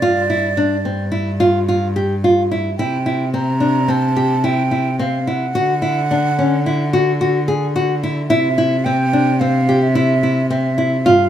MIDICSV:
0, 0, Header, 1, 4, 480
1, 0, Start_track
1, 0, Tempo, 551471
1, 24, Time_signature, 5, 2, 24, 8
1, 9829, End_track
2, 0, Start_track
2, 0, Title_t, "Flute"
2, 0, Program_c, 0, 73
2, 0, Note_on_c, 0, 74, 70
2, 1234, Note_off_c, 0, 74, 0
2, 2420, Note_on_c, 0, 79, 69
2, 2870, Note_off_c, 0, 79, 0
2, 2912, Note_on_c, 0, 82, 76
2, 3394, Note_on_c, 0, 81, 75
2, 3408, Note_off_c, 0, 82, 0
2, 3871, Note_on_c, 0, 79, 73
2, 3884, Note_off_c, 0, 81, 0
2, 4349, Note_off_c, 0, 79, 0
2, 4355, Note_on_c, 0, 77, 58
2, 4592, Note_on_c, 0, 78, 70
2, 4605, Note_off_c, 0, 77, 0
2, 6029, Note_off_c, 0, 78, 0
2, 7218, Note_on_c, 0, 76, 80
2, 7698, Note_on_c, 0, 79, 75
2, 7711, Note_off_c, 0, 76, 0
2, 8181, Note_on_c, 0, 77, 76
2, 8194, Note_off_c, 0, 79, 0
2, 8550, Note_on_c, 0, 76, 74
2, 8563, Note_off_c, 0, 77, 0
2, 9132, Note_off_c, 0, 76, 0
2, 9137, Note_on_c, 0, 76, 65
2, 9619, Note_on_c, 0, 77, 68
2, 9632, Note_off_c, 0, 76, 0
2, 9829, Note_off_c, 0, 77, 0
2, 9829, End_track
3, 0, Start_track
3, 0, Title_t, "Nylon-string guitar"
3, 0, Program_c, 1, 24
3, 19, Note_on_c, 1, 65, 74
3, 178, Note_off_c, 1, 65, 0
3, 258, Note_on_c, 1, 64, 49
3, 418, Note_off_c, 1, 64, 0
3, 498, Note_on_c, 1, 62, 62
3, 658, Note_off_c, 1, 62, 0
3, 741, Note_on_c, 1, 60, 50
3, 900, Note_off_c, 1, 60, 0
3, 971, Note_on_c, 1, 64, 61
3, 1134, Note_off_c, 1, 64, 0
3, 1219, Note_on_c, 1, 65, 67
3, 1379, Note_off_c, 1, 65, 0
3, 1466, Note_on_c, 1, 65, 65
3, 1624, Note_off_c, 1, 65, 0
3, 1706, Note_on_c, 1, 67, 59
3, 1864, Note_off_c, 1, 67, 0
3, 1951, Note_on_c, 1, 65, 60
3, 2107, Note_off_c, 1, 65, 0
3, 2189, Note_on_c, 1, 64, 52
3, 2346, Note_off_c, 1, 64, 0
3, 2430, Note_on_c, 1, 64, 70
3, 2587, Note_off_c, 1, 64, 0
3, 2663, Note_on_c, 1, 64, 54
3, 2822, Note_off_c, 1, 64, 0
3, 2904, Note_on_c, 1, 60, 55
3, 3063, Note_off_c, 1, 60, 0
3, 3136, Note_on_c, 1, 62, 53
3, 3297, Note_off_c, 1, 62, 0
3, 3379, Note_on_c, 1, 60, 66
3, 3539, Note_off_c, 1, 60, 0
3, 3625, Note_on_c, 1, 67, 63
3, 3783, Note_off_c, 1, 67, 0
3, 3863, Note_on_c, 1, 64, 60
3, 4022, Note_off_c, 1, 64, 0
3, 4102, Note_on_c, 1, 64, 49
3, 4261, Note_off_c, 1, 64, 0
3, 4347, Note_on_c, 1, 60, 63
3, 4504, Note_off_c, 1, 60, 0
3, 4590, Note_on_c, 1, 64, 55
3, 4746, Note_off_c, 1, 64, 0
3, 4831, Note_on_c, 1, 66, 73
3, 4987, Note_off_c, 1, 66, 0
3, 5065, Note_on_c, 1, 64, 58
3, 5223, Note_off_c, 1, 64, 0
3, 5318, Note_on_c, 1, 62, 59
3, 5472, Note_off_c, 1, 62, 0
3, 5558, Note_on_c, 1, 61, 52
3, 5711, Note_off_c, 1, 61, 0
3, 5798, Note_on_c, 1, 64, 59
3, 5952, Note_off_c, 1, 64, 0
3, 6035, Note_on_c, 1, 66, 71
3, 6189, Note_off_c, 1, 66, 0
3, 6275, Note_on_c, 1, 66, 61
3, 6429, Note_off_c, 1, 66, 0
3, 6510, Note_on_c, 1, 68, 58
3, 6666, Note_off_c, 1, 68, 0
3, 6751, Note_on_c, 1, 66, 66
3, 6907, Note_off_c, 1, 66, 0
3, 6993, Note_on_c, 1, 64, 62
3, 7148, Note_off_c, 1, 64, 0
3, 7224, Note_on_c, 1, 64, 80
3, 7382, Note_off_c, 1, 64, 0
3, 7467, Note_on_c, 1, 64, 62
3, 7623, Note_off_c, 1, 64, 0
3, 7710, Note_on_c, 1, 60, 67
3, 7866, Note_off_c, 1, 60, 0
3, 7948, Note_on_c, 1, 62, 58
3, 8104, Note_off_c, 1, 62, 0
3, 8189, Note_on_c, 1, 60, 59
3, 8345, Note_off_c, 1, 60, 0
3, 8432, Note_on_c, 1, 67, 66
3, 8587, Note_off_c, 1, 67, 0
3, 8663, Note_on_c, 1, 64, 68
3, 8821, Note_off_c, 1, 64, 0
3, 8905, Note_on_c, 1, 64, 54
3, 9062, Note_off_c, 1, 64, 0
3, 9143, Note_on_c, 1, 60, 65
3, 9301, Note_off_c, 1, 60, 0
3, 9381, Note_on_c, 1, 64, 60
3, 9540, Note_off_c, 1, 64, 0
3, 9625, Note_on_c, 1, 65, 80
3, 9782, Note_off_c, 1, 65, 0
3, 9829, End_track
4, 0, Start_track
4, 0, Title_t, "Cello"
4, 0, Program_c, 2, 42
4, 22, Note_on_c, 2, 43, 62
4, 2422, Note_on_c, 2, 48, 64
4, 2435, Note_off_c, 2, 43, 0
4, 4821, Note_on_c, 2, 50, 62
4, 4834, Note_off_c, 2, 48, 0
4, 7222, Note_on_c, 2, 48, 73
4, 7235, Note_off_c, 2, 50, 0
4, 9624, Note_on_c, 2, 43, 66
4, 9637, Note_off_c, 2, 48, 0
4, 9829, Note_off_c, 2, 43, 0
4, 9829, End_track
0, 0, End_of_file